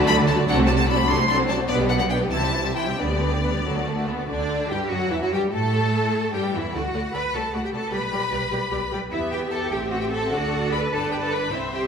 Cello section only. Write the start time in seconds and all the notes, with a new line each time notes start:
Already playing: D3
0.47 C3
1.08 C3
1.69 B2
2.31 C3
2.98 D3
3.63 D3
4.29 D4
4.69 G4
4.89 F#4
5.10 E4
5.22 F#4
5.33 G4
5.53 A4
6.35 G4
6.55 E4
6.74 F#4
7.14 B4
7.34 A4
7.53 F#4
7.64 G4
7.74 A4
7.92 B4
9.11 E4
9.31 G4
9.51 A4
9.72 G4
9.91 F#4
10.01 G4
10.11 A4
10.31 F#4
10.72 B4
10.92 A4
11.11 G4
11.21 A4
11.31 B4
11.51 E4
11.72 G4